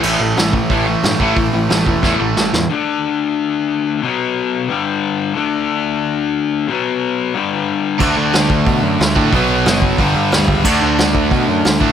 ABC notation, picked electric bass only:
X:1
M:4/4
L:1/8
Q:1/4=181
K:D
V:1 name="Picked electric bass" clef=bass
A,,, A,,, A,,,2 A,,,2 G,, A,,, | A,,, A,,, A,,, E,,, E,, A,,, A,,, E,, | z8 | z8 |
z8 | z8 | D,, D,, D,, D,, B,, F,, D,, A,, | B,,, B,,, F,,,2 G,,, G,, D,, C,, |
D,, D,, D,, D,, B,, F,, D,, A,, |]